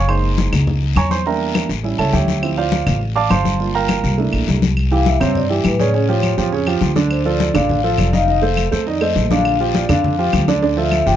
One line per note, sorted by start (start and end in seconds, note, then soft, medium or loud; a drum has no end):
0.00 0.47 F#1 medium
0.08 1.21 G#3 medium
0.08 1.22 A#3 medium
0.08 1.22 D#4 medium
0.08 0.50 C5 medium
0.08 0.50 C6 medium
0.08 high conga soft
0.08 long guiro medium
0.08 claves medium
0.24 high conga soft
0.38 high conga medium
0.38 short guiro medium
0.52 0.93 C#2 medium
0.52 high conga soft
0.52 low conga medium
0.52 short guiro medium
0.52 claves medium
0.67 high conga soft
0.67 low conga medium
0.67 long guiro medium
0.82 high conga soft
0.96 1.64 E2 medium
0.96 1.11 C#5 medium
0.96 1.11 G#5 medium
0.96 1.11 A#5 medium
0.96 1.11 C#6 loud
0.96 high conga medium
0.96 short guiro medium
0.96 claves medium
1.11 1.25 C5 medium
1.11 1.25 C6 loud
1.11 high conga medium
1.11 short guiro medium
1.26 1.67 G3 medium
1.26 1.68 A#3 medium
1.26 1.68 D4 medium
1.26 1.67 A#4 medium
1.26 1.67 E5 medium
1.26 1.67 G5 medium
1.26 1.67 A#5 medium
1.26 high conga soft
1.26 long guiro medium
1.40 high conga soft
1.55 high conga medium
1.55 short guiro medium
1.55 claves medium
1.69 1.97 A1 medium
1.69 high conga soft
1.69 short guiro medium
1.83 2.25 G3 medium
1.83 2.26 C#4 medium
1.83 2.26 E4 medium
1.83 high conga soft
1.83 long guiro medium
1.99 2.13 C#2 medium
1.99 2.13 A4 medium
1.99 2.12 C#5 medium
1.99 2.12 E5 medium
1.99 2.13 A5 medium
1.99 high conga soft
1.99 claves medium
2.13 2.81 D2 medium
2.13 2.54 G4 medium
2.13 2.41 C#5 medium
2.13 2.55 E5 medium
2.13 2.54 G5 medium
2.13 high conga medium
2.13 short guiro medium
2.28 high conga medium
2.28 short guiro medium
2.42 2.62 F3 medium
2.42 2.62 C4 soft
2.42 2.62 E4 medium
2.42 high conga soft
2.42 long guiro medium
2.42 claves medium
2.57 2.98 F4 medium
2.57 2.99 C5 medium
2.57 2.98 D5 medium
2.57 2.98 F5 medium
2.57 high conga soft
2.72 high conga medium
2.72 short guiro medium
2.87 3.27 A1 medium
2.87 high conga soft
2.87 low conga medium
2.87 short guiro medium
2.87 claves medium
3.01 high conga soft
3.01 long guiro medium
3.16 3.30 D5 medium
3.16 3.29 F5 medium
3.16 3.30 A5 medium
3.16 3.30 D6 loud
3.16 high conga soft
3.30 3.98 G1 medium
3.30 3.71 C5 medium
3.30 3.71 F5 medium
3.30 3.72 A5 medium
3.30 3.71 C6 medium
3.30 high conga medium
3.30 short guiro medium
3.30 claves medium
3.45 high conga medium
3.45 short guiro medium
3.59 4.15 G3 medium
3.59 4.15 A#3 soft
3.59 4.16 F4 medium
3.59 high conga soft
3.59 long guiro medium
3.75 4.16 A#4 medium
3.75 4.16 F5 medium
3.75 4.16 G5 medium
3.75 4.15 A#5 loud
3.75 high conga soft
3.89 high conga medium
3.89 short guiro medium
3.89 claves medium
4.04 4.31 C2 medium
4.04 high conga soft
4.04 short guiro medium
4.18 4.60 A3 medium
4.18 4.60 A#3 medium
4.18 4.60 D4 medium
4.18 4.60 E4 medium
4.18 high conga soft
4.18 long guiro medium
4.33 4.47 A#1 medium
4.33 high conga soft
4.33 claves medium
4.48 5.15 C2 loud
4.48 high conga medium
4.48 short guiro medium
4.62 high conga medium
4.62 short guiro medium
4.77 high conga soft
4.77 long guiro medium
4.77 claves medium
4.91 5.15 E3 medium
4.91 5.15 E4 medium
4.91 5.16 G4 medium
4.91 5.06 F5 medium
4.91 high conga soft
5.06 5.21 E5 medium
5.06 high conga medium
5.06 short guiro medium
5.20 5.62 G2 medium
5.20 5.44 C3 medium
5.20 5.45 C4 medium
5.20 5.45 C5 medium
5.20 5.35 C#5 medium
5.20 high conga soft
5.20 low conga medium
5.20 short guiro medium
5.20 claves medium
5.35 5.50 D5 medium
5.35 high conga soft
5.35 low conga medium
5.35 long guiro medium
5.50 5.74 E3 medium
5.50 5.74 E4 medium
5.50 5.74 G4 medium
5.50 5.65 G4 medium
5.50 high conga soft
5.64 6.32 A2 medium
5.64 5.79 B4 medium
5.64 high conga medium
5.64 short guiro medium
5.64 claves medium
5.79 5.91 C#3 medium
5.79 5.91 C#4 medium
5.79 5.91 C#5 medium
5.79 5.94 D5 medium
5.79 high conga medium
5.79 short guiro medium
5.94 6.06 C#3 medium
5.94 6.06 C#4 medium
5.94 6.06 C#5 medium
5.94 6.49 C#5 medium
5.94 high conga soft
5.94 long guiro medium
6.08 6.32 F3 medium
6.08 6.32 F4 medium
6.08 6.33 G4 medium
6.08 high conga soft
6.23 high conga medium
6.23 short guiro medium
6.23 claves medium
6.38 6.78 F2 medium
6.38 6.50 F3 medium
6.38 6.50 F4 medium
6.38 6.50 G4 medium
6.38 high conga soft
6.38 short guiro medium
6.52 6.64 C#3 medium
6.52 6.64 C#4 medium
6.52 6.64 C#5 medium
6.52 high conga soft
6.52 long guiro medium
6.67 6.91 F3 medium
6.67 6.91 F4 medium
6.67 6.91 G4 medium
6.67 high conga soft
6.67 claves medium
6.81 7.49 D2 medium
6.81 high conga medium
6.81 short guiro medium
6.96 7.20 D3 medium
6.96 7.20 D4 medium
6.96 7.20 D5 medium
6.96 high conga medium
6.96 short guiro medium
7.11 7.25 C5 medium
7.11 high conga soft
7.11 long guiro medium
7.11 claves medium
7.25 7.49 F3 medium
7.25 7.50 F4 medium
7.25 7.50 A4 medium
7.25 7.53 D5 medium
7.25 high conga soft
7.40 high conga medium
7.40 short guiro medium
7.54 7.95 A1 medium
7.54 7.78 D3 medium
7.54 7.79 D4 medium
7.54 7.79 D5 medium
7.54 7.96 F5 medium
7.54 high conga soft
7.54 low conga medium
7.54 short guiro medium
7.54 claves medium
7.69 high conga soft
7.69 low conga medium
7.69 long guiro medium
7.83 8.08 F3 medium
7.83 8.08 F4 medium
7.83 8.08 A4 medium
7.83 high conga soft
7.98 8.66 F1 medium
7.98 8.13 D5 medium
7.98 high conga medium
7.98 short guiro medium
7.98 claves medium
8.13 8.25 D#3 medium
8.13 8.25 D#4 medium
8.13 8.25 D#5 medium
8.13 8.54 F5 loud
8.13 high conga medium
8.13 short guiro medium
8.27 8.40 D#3 medium
8.27 8.40 D#4 medium
8.27 8.40 D#5 medium
8.27 high conga soft
8.27 long guiro medium
8.42 8.66 A3 medium
8.42 8.66 A4 medium
8.42 8.67 C5 medium
8.42 high conga soft
8.57 high conga medium
8.57 short guiro medium
8.57 claves medium
8.71 9.13 F2 medium
8.71 8.84 A3 medium
8.71 8.84 A4 medium
8.71 8.84 C5 medium
8.71 high conga soft
8.71 short guiro medium
8.86 8.98 D#3 medium
8.86 8.99 D#4 medium
8.86 9.01 D5 medium
8.86 8.99 D#5 medium
8.86 high conga soft
8.86 long guiro medium
9.01 9.25 A3 medium
9.01 9.25 A4 medium
9.01 9.25 C5 medium
9.01 9.29 D#5 medium
9.01 high conga soft
9.01 claves medium
9.16 9.83 A#1 medium
9.16 high conga medium
9.16 short guiro medium
9.31 9.55 D3 medium
9.31 9.55 D4 medium
9.31 9.55 D5 medium
9.31 9.72 F5 loud
9.31 high conga medium
9.31 short guiro medium
9.45 high conga soft
9.45 long guiro medium
9.45 claves medium
9.60 9.84 F3 medium
9.60 9.84 F4 medium
9.60 9.84 G4 medium
9.60 high conga soft
9.75 9.89 D5 medium
9.75 high conga medium
9.75 short guiro medium
9.89 10.30 F2 medium
9.89 10.13 D3 medium
9.89 10.13 D4 medium
9.89 10.14 D5 medium
9.89 10.30 F5 medium
9.89 high conga soft
9.89 low conga medium
9.89 short guiro medium
9.89 claves medium
10.04 high conga soft
10.04 low conga medium
10.04 long guiro medium
10.18 10.42 F3 medium
10.18 10.42 F4 medium
10.18 10.43 G4 medium
10.18 high conga soft
10.33 11.01 D2 loud
10.33 high conga medium
10.33 short guiro medium
10.33 claves medium
10.48 10.60 D3 medium
10.48 10.60 D4 medium
10.48 10.60 D5 medium
10.48 high conga medium
10.48 short guiro medium
10.62 10.74 D3 medium
10.62 10.74 D4 medium
10.62 10.75 D5 medium
10.62 10.77 D5 medium
10.62 high conga soft
10.62 long guiro medium
10.77 11.01 F3 medium
10.77 11.01 F4 medium
10.77 11.01 A4 medium
10.77 11.05 E5 medium
10.77 high conga soft
10.92 high conga medium
10.92 short guiro medium
10.92 claves medium
11.06 11.16 G1 medium
11.06 11.16 F3 medium
11.06 11.16 F4 medium
11.06 11.16 G4 medium
11.06 11.16 G5 loud
11.06 high conga soft
11.06 short guiro medium